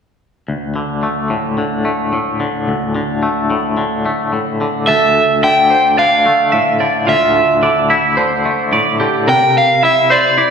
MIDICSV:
0, 0, Header, 1, 4, 480
1, 0, Start_track
1, 0, Key_signature, -1, "minor"
1, 0, Tempo, 550459
1, 417, Time_signature, 4, 2, 24, 8
1, 9159, End_track
2, 0, Start_track
2, 0, Title_t, "Overdriven electric guitar"
2, 0, Program_c, 0, 29
2, 4250, Note_on_c, 0, 76, 51
2, 4739, Note_off_c, 0, 76, 0
2, 4743, Note_on_c, 0, 79, 61
2, 5219, Note_off_c, 0, 79, 0
2, 5222, Note_on_c, 0, 77, 55
2, 6178, Note_off_c, 0, 77, 0
2, 6182, Note_on_c, 0, 76, 49
2, 7104, Note_off_c, 0, 76, 0
2, 8102, Note_on_c, 0, 79, 68
2, 8346, Note_off_c, 0, 79, 0
2, 8351, Note_on_c, 0, 77, 59
2, 8585, Note_off_c, 0, 77, 0
2, 8588, Note_on_c, 0, 76, 60
2, 8819, Note_on_c, 0, 74, 63
2, 8828, Note_off_c, 0, 76, 0
2, 9159, Note_off_c, 0, 74, 0
2, 9159, End_track
3, 0, Start_track
3, 0, Title_t, "Clean electric guitar"
3, 0, Program_c, 1, 27
3, 4259, Note_on_c, 1, 69, 51
3, 4734, Note_on_c, 1, 76, 53
3, 4974, Note_on_c, 1, 72, 45
3, 5206, Note_off_c, 1, 72, 0
3, 5209, Note_on_c, 1, 74, 53
3, 5236, Note_off_c, 1, 76, 0
3, 5687, Note_on_c, 1, 76, 51
3, 5693, Note_off_c, 1, 74, 0
3, 5932, Note_on_c, 1, 74, 48
3, 5958, Note_off_c, 1, 76, 0
3, 6165, Note_on_c, 1, 65, 57
3, 6174, Note_off_c, 1, 74, 0
3, 6651, Note_off_c, 1, 65, 0
3, 6652, Note_on_c, 1, 74, 54
3, 6885, Note_off_c, 1, 74, 0
3, 6888, Note_on_c, 1, 76, 53
3, 7125, Note_on_c, 1, 72, 60
3, 7311, Note_off_c, 1, 69, 0
3, 7605, Note_off_c, 1, 76, 0
3, 7609, Note_on_c, 1, 74, 50
3, 7610, Note_off_c, 1, 72, 0
3, 7847, Note_on_c, 1, 67, 48
3, 7852, Note_off_c, 1, 74, 0
3, 8087, Note_on_c, 1, 70, 57
3, 8091, Note_off_c, 1, 67, 0
3, 8569, Note_on_c, 1, 76, 49
3, 8595, Note_off_c, 1, 70, 0
3, 8807, Note_on_c, 1, 72, 51
3, 9048, Note_off_c, 1, 76, 0
3, 9051, Note_on_c, 1, 74, 61
3, 9077, Note_off_c, 1, 72, 0
3, 9159, Note_off_c, 1, 74, 0
3, 9159, End_track
4, 0, Start_track
4, 0, Title_t, "Clean electric guitar"
4, 0, Program_c, 2, 27
4, 422, Note_on_c, 2, 38, 35
4, 659, Note_on_c, 2, 50, 33
4, 897, Note_on_c, 2, 57, 36
4, 1135, Note_on_c, 2, 45, 37
4, 1373, Note_off_c, 2, 50, 0
4, 1376, Note_on_c, 2, 50, 32
4, 1609, Note_off_c, 2, 57, 0
4, 1612, Note_on_c, 2, 57, 33
4, 1845, Note_off_c, 2, 45, 0
4, 1856, Note_on_c, 2, 45, 37
4, 2083, Note_off_c, 2, 50, 0
4, 2094, Note_on_c, 2, 50, 39
4, 2332, Note_off_c, 2, 38, 0
4, 2335, Note_on_c, 2, 38, 40
4, 2566, Note_off_c, 2, 50, 0
4, 2577, Note_on_c, 2, 50, 40
4, 2803, Note_off_c, 2, 57, 0
4, 2813, Note_on_c, 2, 57, 36
4, 3045, Note_off_c, 2, 45, 0
4, 3056, Note_on_c, 2, 45, 41
4, 3280, Note_off_c, 2, 50, 0
4, 3290, Note_on_c, 2, 50, 34
4, 3526, Note_off_c, 2, 57, 0
4, 3536, Note_on_c, 2, 57, 35
4, 3537, Note_off_c, 2, 38, 0
4, 3764, Note_off_c, 2, 45, 0
4, 3775, Note_on_c, 2, 45, 32
4, 4010, Note_off_c, 2, 50, 0
4, 4020, Note_on_c, 2, 50, 37
4, 4257, Note_off_c, 2, 45, 0
4, 4257, Note_off_c, 2, 57, 0
4, 4258, Note_on_c, 2, 38, 45
4, 4259, Note_off_c, 2, 50, 0
4, 4739, Note_on_c, 2, 50, 42
4, 5208, Note_off_c, 2, 50, 0
4, 5219, Note_on_c, 2, 50, 41
4, 5458, Note_off_c, 2, 38, 0
4, 5458, Note_on_c, 2, 57, 39
4, 5698, Note_on_c, 2, 45, 41
4, 5924, Note_off_c, 2, 50, 0
4, 5934, Note_on_c, 2, 50, 41
4, 6171, Note_on_c, 2, 38, 46
4, 6641, Note_off_c, 2, 50, 0
4, 6652, Note_on_c, 2, 50, 44
4, 6657, Note_off_c, 2, 57, 0
4, 6891, Note_on_c, 2, 64, 45
4, 6897, Note_off_c, 2, 45, 0
4, 7122, Note_off_c, 2, 50, 0
4, 7132, Note_on_c, 2, 50, 41
4, 7371, Note_on_c, 2, 57, 39
4, 7373, Note_off_c, 2, 38, 0
4, 7612, Note_on_c, 2, 45, 46
4, 7841, Note_off_c, 2, 50, 0
4, 7851, Note_on_c, 2, 50, 43
4, 8090, Note_on_c, 2, 48, 46
4, 8093, Note_off_c, 2, 45, 0
4, 8093, Note_off_c, 2, 50, 0
4, 8093, Note_off_c, 2, 57, 0
4, 8573, Note_off_c, 2, 64, 0
4, 8573, Note_on_c, 2, 64, 43
4, 8809, Note_on_c, 2, 72, 51
4, 9044, Note_off_c, 2, 64, 0
4, 9048, Note_on_c, 2, 64, 44
4, 9159, Note_off_c, 2, 48, 0
4, 9159, Note_off_c, 2, 64, 0
4, 9159, Note_off_c, 2, 72, 0
4, 9159, End_track
0, 0, End_of_file